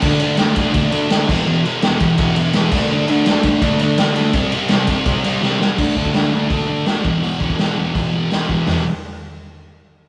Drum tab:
CC |x-------------x-|--------------x-|----------------|----------------|
RD |--x-x-x-x-x-x---|--x-x-x-x-x-x---|--x-x-x-x-x-x-x-|x-x-x-x-x-x-----|
HH |----------------|----------------|----------------|----------------|
SD |----o-------o---|----o-------o---|----o-------o---|----o-------o-o-|
FT |----------------|----------------|----------------|----------------|
BD |o-----o-o-----o-|------o-o-----o-|------o-o-------|o-----o-o-------|

CC |x---------------|----------------|----------------|
RD |----------------|----------------|----------------|
HH |----o---o---o---|o---o---o---o---|o---------------|
SD |----o-------o---|----o-------o---|o---------------|
FT |----------------|----------------|o---------------|
BD |o-oo----o-----o-|--oo----o-----o-|----------------|